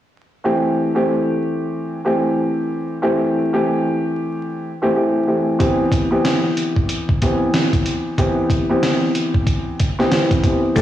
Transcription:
0.44 E3 A3 C4 G4
0.95 E3 A3 C4 G4
2.04 E3 A3 C4 G4
3.02 E3 A3 C4 G4
3.53 E3 A3 C4 G4
4.82 E3 A3 C4 G4
4.95 E3 A3 C4 G4
5.27 E3 A3 C4 G4
5.59 E3 B3 C4 G4, kick, closed hi-hat
5.92 kick, closed hi-hat
6.11 E3 B3 C4 G4
6.25 snare, closed hi-hat
6.57 closed hi-hat
6.76 kick
6.89 closed hi-hat
7.09 kick
7.22 E3 B3 C4 G4, kick, closed hi-hat
7.54 snare, closed hi-hat
7.73 kick, closed hi-hat
7.86 closed hi-hat
8.18 E3 B3 C4 G4, kick, closed hi-hat
8.50 kick, closed hi-hat
8.69 E3 B3 C4 G4
8.83 snare, closed hi-hat
9.15 closed hi-hat
9.34 kick
9.47 kick, closed hi-hat
9.80 kick, closed hi-hat
9.99 E3 B3 C4 G4, snare
10.12 E3 B3 C4 G4, snare, closed hi-hat
10.31 kick, closed hi-hat
10.44 E3 B3 C4 G4, kick, closed hi-hat
10.76 A1 E3 A3 C4 G4 A4 E5 A5 C6, kick, closed hi-hat, shaker

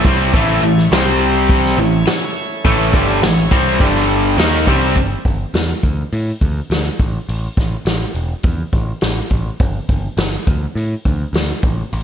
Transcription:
Already playing: C#4 E4 A4 C#5
0.05 C2 C3 G3 C4, kick, tambourine
0.21 tambourine
0.33 A1 A2 E3 A3, kick, open hi-hat, tambourine
0.50 tambourine
0.62 A1 A2 E3, tambourine
0.78 snare
0.91 C2 C3 G3 C4 G4 C5, snare, open hi-hat, tambourine
1.05 tambourine
1.20 tambourine
1.34 tambourine
1.49 kick, open hi-hat
1.64 snare, tambourine
1.77 A1 A2 E3 A3 C#4 E4 C#5, tambourine
1.92 tambourine
2.06 muted overdriven electric guitar stroke, muted picked electric bass stroke, muted distorted electric guitar stroke, snare, open hi-hat, tambourine
2.36 tambourine
2.51 tambourine
2.65 A1 A2 E3 A3, kick, open hi-hat, tambourine
2.79 tambourine
2.93 G1 G2 D3 G3, kick, tambourine
3.09 tambourine
3.21 A1 A2 E3, snare, open hi-hat, tambourine
3.38 tambourine
3.51 C2 C3 G3 C4, kick, tambourine
3.66 tambourine
3.79 G1 G2 D3 G3, kick, open hi-hat, tambourine
3.84 D4 G4 D5
3.96 snare, tambourine
4.11 tambourine
4.25 tambourine
4.37 D#2 D#3 A#3 C#4 D#4 E4 A4 E5, snare, open hi-hat, tambourine
4.56 tambourine
4.67 C2 C3 G3 C4, kick, tambourine
4.85 tambourine
4.95 G1, kick, open hi-hat
5.25 G1, kick, open hi-hat
5.54 E2, snare, open hi-hat
5.83 D2, kick, open hi-hat
6.12 A2, open hi-hat
6.41 D2, kick, open hi-hat
6.70 D2, snare, open hi-hat
6.99 A1, kick, open hi-hat
7.29 A1, open hi-hat
7.57 A1, kick, snare, open hi-hat
7.85 A1, snare, open hi-hat
8.15 E1, open hi-hat
8.43 E2, kick, open hi-hat
8.73 A1, kick, open hi-hat
9.01 A1, snare, open hi-hat
9.30 A1, kick, open hi-hat
9.60 G1, kick, open hi-hat
9.89 G1, kick, open hi-hat
10.17 G1, snare, open hi-hat
10.47 D2, kick, open hi-hat
10.75 A2, open hi-hat
11.05 D2, kick, open hi-hat
11.33 D2, snare, open hi-hat
11.63 A1, kick, open hi-hat
11.93 A1, open hi-hat

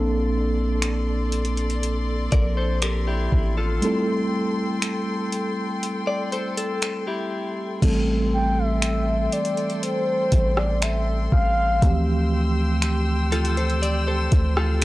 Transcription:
Already playing: A#1 F3 A#3 C4 D4 A4 D5 C6
0.82 finger snap, closed hi-hat
1.32 closed hi-hat
1.45 closed hi-hat
1.57 closed hi-hat
1.70 closed hi-hat
1.83 closed hi-hat
2.32 A#1 A#4 D5, kick, closed hi-hat
2.57 A4 C5
2.82 G4 A#4, finger snap, closed hi-hat
3.07 E4 G4
3.32 A1, kick
3.57 F4 A4
3.82 G3 A3 C4 E4 A4 G5, closed hi-hat
4.82 finger snap, closed hi-hat
5.32 closed hi-hat
5.83 closed hi-hat
6.07 D5
6.32 A4 C5, closed hi-hat
6.57 A4, closed hi-hat
6.82 finger snap, closed hi-hat
7.07 E4 G4
7.82 A1 E3 G3 A3 C4 A4 G5 C6, kick, closed hi-hat, crash
8.34 G5
8.58 E5
8.82 finger snap, closed hi-hat
9.32 D5, closed hi-hat
9.45 closed hi-hat
9.57 closed hi-hat
9.70 closed hi-hat
9.83 C5, closed hi-hat
10.32 A1, kick, closed hi-hat
10.57 D5, cross-stick
10.82 E5, finger snap, closed hi-hat
11.32 A1 F5, kick
11.82 D2 E3 F3 A3 C4 G4 G5 E6, kick, closed hi-hat
12.82 finger snap, closed hi-hat
13.32 F4 A4, closed hi-hat
13.45 closed hi-hat
13.57 A4 C5, closed hi-hat
13.70 closed hi-hat
13.82 D5, closed hi-hat
14.07 A4 C5
14.32 D2, kick, closed hi-hat
14.57 F4 A4, cross-stick

